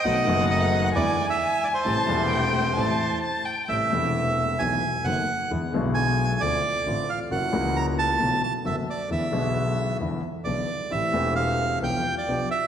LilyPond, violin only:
\new Staff \with { instrumentName = "Violin" } { \time 4/4 \key a \minor \tempo 4 = 132 fis''2 gis''4 gis''4 | a''4 g''4 a''4 a''8 g''8 | r1 | r1 |
r1 | r1 | r1 | }